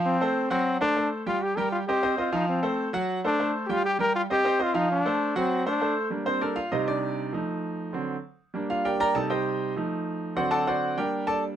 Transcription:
0.00 0.15 F3 loud
0.00 0.15 F4 medium
0.00 0.15 F5 loud
0.06 0.48 C4 loud
0.21 0.46 A3 medium
0.21 0.46 A4 medium
0.21 0.46 C5 medium
0.50 0.75 F#3 medium
0.50 0.79 C4 medium
0.50 0.75 F#4 medium
0.50 0.76 F#5 medium
0.81 0.93 A3 medium
0.81 1.09 D4 loud
0.81 0.93 A4 medium
0.81 0.93 C5 medium
0.96 1.21 A3 medium
0.96 1.22 A4 medium
0.96 1.22 C5 medium
1.26 1.51 G3 medium
1.26 1.44 F4 loud
1.26 1.52 G4 medium
1.26 1.52 G5 medium
1.43 1.58 G4 medium
1.57 1.82 G3 medium
1.57 1.82 G4 medium
1.57 1.72 A#4 medium
1.57 1.83 G5 medium
1.72 1.79 F4 medium
1.87 2.00 C4 medium
1.87 2.16 G4 loud
1.87 2.01 C5 medium
1.87 2.01 D#5 medium
2.03 2.15 C4 medium
2.03 2.15 C5 medium
2.03 2.15 D#5 medium
2.17 2.30 C4 medium
2.17 2.32 F4 medium
2.17 2.30 C5 medium
2.17 2.30 D#5 medium
2.32 2.58 F3 loud
2.32 2.48 D#4 medium
2.32 2.57 F4 medium
2.32 2.58 F5 loud
2.49 2.91 C4 medium
2.63 2.88 A3 medium
2.63 2.88 A4 medium
2.63 2.88 C5 medium
2.93 3.18 F#3 loud
2.93 3.18 F#4 medium
2.93 3.19 F#5 loud
3.24 3.37 A3 medium
3.24 3.53 D4 loud
3.24 3.37 A4 medium
3.24 3.37 C5 medium
3.39 3.64 A3 medium
3.39 3.64 A4 medium
3.39 3.64 C5 medium
3.67 3.94 G3 medium
3.67 3.72 G4 medium
3.67 3.94 G4 medium
3.67 3.94 G5 medium
3.71 3.85 F4 loud
3.86 3.99 G4 loud
3.99 4.24 G3 medium
3.99 4.24 G4 medium
3.99 4.14 A#4 loud
3.99 4.25 G5 medium
4.16 4.22 F4 loud
4.30 4.43 C4 medium
4.30 4.64 G4 loud
4.30 4.43 C5 medium
4.30 4.43 D#5 medium
4.44 4.57 C4 medium
4.44 4.57 C5 medium
4.44 4.58 D#5 medium
4.59 4.72 C4 medium
4.59 4.78 F4 loud
4.59 4.72 C5 medium
4.59 4.72 D#5 medium
4.74 5.00 F3 loud
4.74 4.91 D#4 medium
4.74 5.00 F4 medium
4.74 5.00 F5 loud
4.92 5.34 D4 loud
5.05 5.30 A3 medium
5.05 5.31 A4 medium
5.05 5.31 C5 medium
5.35 5.61 F#3 medium
5.35 5.65 C4 medium
5.35 5.61 F#4 loud
5.35 5.61 F#5 loud
5.66 5.78 A3 medium
5.66 5.95 D4 medium
5.66 5.79 A4 medium
5.66 5.79 C5 medium
5.80 6.06 A3 medium
5.80 6.06 A4 medium
5.80 6.06 C5 medium
6.10 6.54 G3 medium
6.10 6.55 A#3 medium
6.10 6.40 D4 medium
6.26 6.42 C4 medium
6.26 6.41 C5 medium
6.41 6.57 D4 medium
6.41 6.57 A4 medium
6.41 6.57 A#4 medium
6.41 6.56 D5 medium
6.56 6.71 F4 medium
6.56 6.71 F5 loud
6.72 7.30 C3 medium
6.72 7.30 G3 medium
6.72 7.30 D#4 medium
6.72 6.87 G4 medium
6.72 6.87 C5 medium
6.72 6.87 D#5 medium
6.88 7.30 D4 medium
6.88 7.30 D5 medium
7.33 7.90 F3 medium
7.33 7.91 A3 medium
7.33 7.91 D#4 medium
7.93 8.13 D3 medium
7.93 8.14 F#3 medium
7.93 8.14 C4 medium
8.54 9.12 G3 medium
8.54 9.12 A#3 medium
8.54 9.13 D4 medium
8.70 8.85 F4 medium
8.70 8.84 F5 loud
8.85 9.00 G4 medium
8.85 8.99 A#4 medium
8.85 8.99 D5 medium
8.85 8.99 G5 medium
9.00 9.15 A#4 medium
9.00 9.15 D5 medium
9.00 9.15 G5 medium
9.00 9.15 A#5 loud
9.15 9.72 C3 medium
9.15 9.73 G3 medium
9.15 9.73 D#4 medium
9.15 9.30 A4 medium
9.15 9.30 A5 medium
9.30 9.73 G4 medium
9.30 9.73 C5 medium
9.30 9.72 D#5 medium
9.30 9.72 G5 medium
9.76 10.34 F3 medium
9.76 10.34 A3 medium
9.76 10.34 D#4 medium
10.36 10.94 D3 medium
10.36 10.94 F#3 medium
10.36 10.94 C4 medium
10.36 10.51 F#4 medium
10.36 10.51 C5 medium
10.36 10.50 D5 medium
10.36 10.50 F#5 medium
10.51 10.66 A4 medium
10.51 10.66 D5 medium
10.51 10.66 F#5 medium
10.51 10.66 A5 loud
10.67 10.95 F#4 medium
10.67 10.95 C5 medium
10.67 10.95 D5 medium
10.67 10.95 F#5 medium
10.97 11.55 G3 medium
10.97 11.55 A#3 medium
10.97 11.55 D4 medium
10.97 11.26 G4 medium
10.97 11.26 A#4 medium
10.97 11.26 D5 medium
10.97 11.25 G5 medium
11.27 11.42 A4 medium
11.27 11.42 D5 medium
11.27 11.42 A5 loud

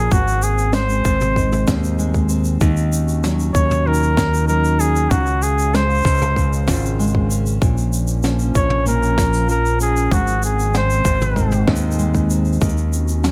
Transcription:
0.00 0.11 A#2 medium
0.00 0.18 F3 medium
0.00 0.18 C#4 medium
0.00 0.18 F4 medium
0.00 0.14 G#4 loud
0.11 1.01 G#1 medium
0.11 1.35 G#2 medium
0.11 5.08 D#3 medium
0.11 2.59 G#3 medium
0.11 2.59 C4 medium
0.11 0.45 F#4 medium
0.11 kick loud
0.11 shaker medium
0.28 shaker soft
0.42 0.75 G#4 medium
0.42 shaker medium
0.58 shaker medium
0.73 1.97 G#3 medium
0.73 1.68 C5 medium
0.73 snare medium
0.73 shaker medium
0.89 shaker soft
1.05 1.63 G#1 medium
1.05 2.28 C4 medium
1.05 kick loud
1.05 shaker medium
1.21 mid tom medium
1.21 shaker soft
1.36 2.68 G#2 medium
1.36 kick medium
1.36 shaker medium
1.52 mid tom medium
1.52 shaker soft
1.67 2.57 D#2 loud
1.67 3.59 D#4 medium
1.67 kick loud
1.67 snare medium
1.67 shaker medium
1.84 shaker medium
1.99 2.68 G#3 medium
1.99 shaker medium
2.14 kick medium
2.14 shaker soft
2.29 2.67 C4 medium
2.29 shaker medium
2.44 shaker soft
2.61 3.51 D#2 loud
2.61 3.86 D#3 medium
2.61 5.09 C#4 medium
2.61 5.09 F#4 medium
2.61 kick loud
2.61 shaker medium
2.77 shaker soft
2.93 shaker medium
3.08 shaker soft
3.24 4.48 F#3 medium
3.24 snare medium
3.24 shaker medium
3.39 shaker soft
3.54 5.07 D#2 medium
3.54 4.79 C#4 medium
3.54 3.88 C#5 loud
3.54 kick loud
3.54 shaker medium
3.71 mid tom medium
3.71 shaker soft
3.87 5.11 D#3 medium
3.87 4.47 A#4 loud
3.94 shaker medium
4.03 shaker soft
4.17 5.18 D#4 medium
4.17 kick loud
4.17 snare medium
4.17 shaker medium
4.34 shaker medium
4.48 5.18 F#3 medium
4.48 4.81 A#4 loud
4.48 shaker medium
4.65 shaker soft
4.80 6.05 C#4 medium
4.80 5.12 G#4 loud
4.80 shaker medium
4.96 shaker medium
5.09 6.01 C#2 medium
5.09 7.58 C#3 medium
5.09 6.36 C#3 medium
5.09 7.59 G#3 medium
5.09 5.44 F#4 medium
5.09 7.58 F5 medium
5.09 kick loud
5.09 shaker medium
5.26 shaker soft
5.42 5.77 G#4 medium
5.42 shaker medium
5.59 shaker medium
5.74 6.98 G#3 medium
5.74 6.68 C5 loud
5.74 snare medium
5.74 shaker medium
5.90 shaker soft
5.94 shaker soft
5.98 shaker soft
6.02 6.69 C#2 medium
6.02 7.29 C#4 medium
6.02 kick loud
6.02 shaker soft
6.06 shaker medium
6.10 shaker soft
6.14 shaker soft
6.18 shaker soft
6.22 mid tom medium
6.22 shaker medium
6.36 7.61 C#3 medium
6.36 kick medium
6.36 shaker medium
6.53 shaker soft
6.67 7.57 G#1 medium
6.67 9.17 F4 medium
6.67 kick loud
6.67 snare medium
6.67 mid tom medium
6.67 shaker medium
6.70 shaker medium
6.73 shaker medium
6.75 shaker soft
6.77 shaker soft
6.79 shaker soft
6.82 shaker soft
6.85 shaker medium
6.99 7.68 G#3 medium
6.99 shaker medium
7.07 shaker soft
7.15 kick medium
7.30 8.55 C#4 medium
7.30 shaker medium
7.46 shaker medium
7.60 8.51 A#1 medium
7.60 8.85 A#2 medium
7.60 10.09 F3 medium
7.60 10.08 A#3 medium
7.60 10.08 C#4 loud
7.60 kick loud
7.60 shaker medium
7.78 shaker soft
7.93 shaker medium
8.07 shaker medium
8.23 9.48 F3 medium
8.23 snare medium
8.23 shaker medium
8.39 shaker soft
8.55 10.07 A#1 medium
8.55 9.79 C#4 medium
8.55 8.85 C#5 loud
8.55 kick loud
8.55 shaker medium
8.70 mid tom medium
8.86 10.11 A#2 medium
8.86 9.46 A#4 loud
8.86 shaker soft
8.86 shaker medium
9.03 shaker soft
9.18 10.18 F4 medium
9.18 kick loud
9.18 snare medium
9.18 shaker medium
9.33 shaker soft
9.49 10.18 F3 medium
9.49 9.79 A#4 medium
9.49 shaker soft
9.66 shaker soft
9.80 10.18 C#4 medium
9.80 10.14 G#4 medium
9.80 shaker medium
9.97 shaker soft
10.11 11.01 G#1 loud
10.11 11.35 G#2 medium
10.11 12.59 D#3 medium
10.11 12.59 G#3 medium
10.11 12.59 C4 loud
10.11 10.43 F#4 medium
10.11 kick loud
10.11 shaker medium
10.27 shaker soft
10.43 10.73 G#4 medium
10.43 shaker medium
10.59 shaker soft
10.74 11.98 G#3 medium
10.74 11.65 C5 medium
10.74 snare medium
10.74 shaker medium
10.90 shaker soft
11.05 11.63 G#1 medium
11.05 12.29 C4 medium
11.05 kick loud
11.05 shaker medium
11.21 mid tom medium
11.21 shaker soft
11.36 12.68 G#2 medium
11.36 kick medium
11.36 shaker soft
11.52 mid tom medium
11.52 shaker soft
11.67 12.57 D#2 loud
11.67 13.32 D#4 medium
11.67 kick loud
11.67 snare medium
11.76 shaker medium
11.91 shaker medium
11.99 12.68 G#3 medium
11.99 shaker medium
12.15 kick medium
12.15 shaker soft
12.30 12.68 C4 medium
12.30 shaker medium
12.45 shaker soft
12.53 shaker soft
12.61 13.32 D#2 medium
12.61 13.32 D#3 medium
12.61 13.32 C#4 medium
12.61 13.32 F#4 loud
12.61 kick loud
12.61 shaker soft
12.61 shaker medium
12.69 shaker soft
12.77 shaker soft
12.93 shaker medium
13.08 shaker soft
13.23 13.32 F#3 medium
13.23 snare medium
13.23 shaker medium

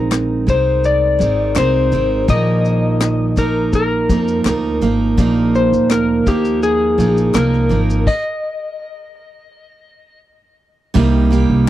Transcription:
0.00 0.48 A#1 medium
0.00 0.45 G#3 medium
0.00 0.47 C4 medium
0.00 0.48 D#4 medium
0.00 0.49 A#4 medium
0.12 cross-stick loud
0.12 clap medium
0.12 shaker medium
0.47 1.16 C2 medium
0.47 1.17 G#3 soft
0.47 1.19 C4 soft
0.47 1.20 D#4 medium
0.47 1.21 A#4 medium
0.47 0.86 C5 medium
0.47 kick medium
0.47 shaker medium
0.84 1.59 D5 medium
0.84 shaker medium
1.19 1.53 G#1 medium
1.19 1.54 G#3 medium
1.19 1.55 C4 medium
1.19 1.56 D#4 medium
1.19 1.57 A#4 medium
1.19 shaker soft
1.55 1.90 C2 medium
1.55 1.91 G#3 medium
1.55 1.91 C4 medium
1.55 1.93 D#4 medium
1.55 1.93 A#4 medium
1.55 2.25 C5 medium
1.55 cross-stick loud
1.55 clap medium
1.55 shaker medium
1.92 2.26 G#1 medium
1.92 2.28 G#3 medium
1.92 2.29 C4 medium
1.92 2.29 D#4 medium
1.92 2.29 A#4 medium
1.92 shaker soft
2.28 4.05 A#1 medium
2.28 3.37 A#2 medium
2.28 3.39 D#3 medium
2.28 3.35 F3 medium
2.28 3.37 A#3 medium
2.28 3.38 D#4 medium
2.28 3.39 A#4 medium
2.28 3.41 D#5 medium
2.28 kick loud
2.28 shaker medium
2.65 shaker soft
3.01 cross-stick loud
3.01 clap medium
3.01 shaker medium
3.36 4.08 F3 soft
3.36 4.10 A#3 medium
3.36 4.11 D#4 medium
3.36 3.74 A#4 medium
3.36 4.12 A#4 medium
3.36 kick medium
3.36 shaker soft
3.73 4.79 A#4 medium
3.73 kick medium
3.73 shaker medium
4.09 4.43 F2 medium
4.09 4.44 F3 medium
4.09 4.45 A#3 medium
4.09 4.46 D#4 medium
4.09 4.47 A#4 medium
4.09 kick medium
4.09 shaker soft
4.28 shaker soft
4.45 4.79 D2 medium
4.45 4.80 F3 medium
4.45 4.81 A#3 medium
4.45 4.82 D#4 medium
4.45 4.83 A#4 medium
4.45 cross-stick loud
4.45 clap medium
4.45 shaker medium
4.82 5.15 G#1 medium
4.82 5.17 F3 medium
4.82 5.17 A#3 medium
4.82 5.18 D#4 medium
4.82 5.18 A#4 medium
4.82 shaker medium
5.17 5.68 A#1 loud
5.17 6.26 A#2 medium
5.17 6.25 F3 medium
5.17 6.27 A#3 medium
5.17 6.28 D#4 medium
5.17 6.28 A#4 medium
5.17 kick loud
5.17 shaker medium
5.55 5.91 C5 medium
5.55 shaker soft
5.73 6.22 D2 medium
5.73 shaker soft
5.91 6.28 A#4 medium
5.91 cross-stick loud
5.91 clap medium
5.91 shaker medium
6.26 6.95 D#2 medium
6.26 6.97 F3 medium
6.26 6.98 A#3 medium
6.26 7.00 D#4 medium
6.26 6.61 G4 medium
6.26 7.00 A#4 medium
6.26 kick medium
6.26 shaker medium
6.45 shaker soft
6.63 7.37 G#4 medium
6.63 shaker medium
6.98 7.32 A#1 medium
6.98 7.32 F3 soft
6.98 7.33 A#3 medium
6.98 7.34 D#4 medium
6.98 7.35 A#4 medium
6.98 shaker soft
7.17 shaker medium
7.33 7.68 C2 medium
7.33 7.68 F3 medium
7.33 7.69 A#3 medium
7.33 7.70 D#4 medium
7.33 8.09 A#4 medium
7.33 7.71 A#4 medium
7.33 cross-stick loud
7.33 clap medium
7.33 shaker medium
7.53 cross-stick soft
7.69 8.04 G#1 medium
7.69 8.06 F3 medium
7.69 8.07 A#3 medium
7.69 8.07 D#4 medium
7.69 8.07 A#4 medium
7.69 shaker soft
7.90 shaker medium
8.07 10.20 D#5 loud
8.07 kick medium
8.07 crash medium
10.94 11.46 C2 loud
10.94 11.31 C3 medium
10.94 11.29 G3 medium
10.94 11.31 A#3 loud
10.94 11.32 D#4 medium
10.94 11.32 G4 loud
10.94 kick loud
10.94 crash medium
11.30 11.69 G3 medium
11.30 11.69 A#3 medium
11.30 11.69 D#4 medium
11.30 11.69 G4 medium
11.30 shaker soft
11.50 11.69 C2 medium

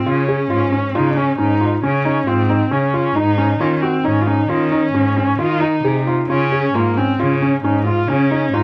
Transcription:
0.06 0.47 C#3 medium
0.06 0.97 C#4 medium
0.06 0.19 F4 medium
0.28 0.41 G#4 medium
0.50 0.71 G#2 medium
0.50 0.63 F4 medium
0.72 0.85 C#4 medium
0.95 1.36 C#3 medium
0.95 1.19 D#4 medium
0.95 1.08 F4 medium
1.17 1.30 C#4 medium
1.17 1.38 C#4 medium
1.38 1.80 G#2 medium
1.38 1.52 C#4 medium
1.38 1.80 D#4 medium
1.61 1.74 F4 medium
1.84 2.24 C#3 medium
1.84 1.97 C#4 medium
1.84 2.29 C#4 medium
2.05 2.18 D#4 medium
2.27 2.68 G#2 medium
2.27 2.74 C4 medium
2.27 2.40 F4 medium
2.50 2.63 D#4 medium
2.71 3.12 C#3 medium
2.71 2.85 C#4 medium
2.71 3.17 C#4 medium
2.94 3.07 F4 medium
3.15 3.57 G#2 medium
3.15 3.62 D#4 medium
3.15 3.29 D#4 medium
3.38 3.51 C#4 medium
3.60 3.80 D#3 medium
3.60 3.83 C#4 medium
3.60 3.73 F4 medium
3.82 4.06 C4 medium
3.82 3.96 F#4 medium
4.04 4.46 G#2 medium
4.04 4.23 C#4 medium
4.04 4.18 D#4 medium
4.21 4.28 F4 medium
4.27 4.40 C#4 medium
4.27 4.50 D#4 medium
4.49 4.90 D#3 medium
4.49 5.40 C#4 medium
4.49 4.63 F4 medium
4.72 4.85 D#4 medium
4.94 5.35 G#2 medium
4.94 5.08 C#4 medium
5.17 5.30 C#4 medium
5.39 5.81 D#3 medium
5.39 5.62 F4 medium
5.39 5.52 F4 medium
5.60 6.06 D#4 medium
5.60 5.75 D#4 medium
5.84 6.25 C3 medium
5.84 5.98 G#4 medium
6.07 6.20 F4 medium
6.28 6.71 C#3 medium
6.28 6.76 C#4 medium
6.28 6.43 F4 medium
6.52 6.65 G#4 medium
6.74 6.95 G#2 medium
6.74 6.98 A#3 medium
6.74 6.88 F4 medium
6.97 7.21 C4 medium
6.97 7.10 C#4 medium
7.19 7.61 C#3 medium
7.19 7.63 C#4 medium
7.19 7.33 F4 medium
7.42 7.55 C#4 medium
7.64 8.05 G#2 medium
7.64 7.77 C#4 medium
7.64 7.85 D#4 medium
7.86 8.10 F4 medium
7.86 8.00 F4 medium
8.08 8.50 C#3 medium
8.08 8.55 C#4 medium
8.08 8.23 C#4 medium
8.31 8.44 D#4 medium
8.53 8.63 G#2 medium
8.53 8.63 D#4 medium
8.53 8.63 F4 medium

